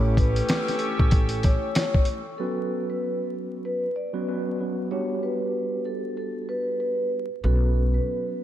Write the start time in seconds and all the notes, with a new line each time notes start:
Already playing: A1 A3 C#4 E4 G4 A4 C#5 G5 C#6 E6
0.17 B4, kick, closed hi-hat
0.36 closed hi-hat
0.49 snare, closed hi-hat
0.68 snare, closed hi-hat
0.79 A4, closed hi-hat
0.99 A1, kick
1.11 A4, kick, closed hi-hat
1.29 closed hi-hat
1.43 C#5, kick, snare, closed hi-hat
1.75 C#5, snare, closed hi-hat
1.94 kick
2.05 closed hi-hat
2.38 F#3 B3 C#4 F#4 A4 B4
2.90 B4
3.65 B4
3.96 D5
4.13 F#3 B3 C#4 F#4 B4
4.28 F#3 B3 C#4 F#4 B4
4.60 F#3 B3 C#4 F#4 B4
4.91 G3 B3 D4 F#4 G4 C#5
5.23 B4
5.85 A4
6.17 A4
6.49 B4
6.80 B4
7.44 B1 F#3 B3 C#4 F#4 A4 B4
7.94 B4